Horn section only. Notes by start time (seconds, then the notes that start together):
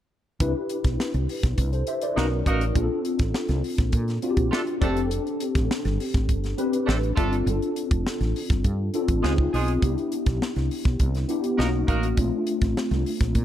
2.17 A#3 D#4 F#4 A#4
2.46 A#3 D#4 F#4 A#4
4.51 A3 D4 F4 A4
4.82 A3 C4 D4 A4
6.86 A3 C4 D4 A4
7.16 A3 D4 F4 A4
9.23 G#3 D#4 F4 G#4
9.53 G#3 D#4 F4 G#4
11.58 A#3 D#4 F#4 A#4
11.88 A#3 D#4 F#4 A#4